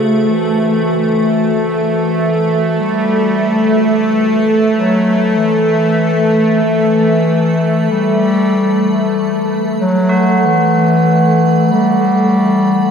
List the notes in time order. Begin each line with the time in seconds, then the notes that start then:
Already playing: C#3 A3 C4 F#4
0.29 E3
1.54 E3
2.79 G3 B4
4.74 F#3
5.37 E3
6.64 E3
7.90 G3
9.81 F#3
10.09 F#4
10.46 E3
11.72 G3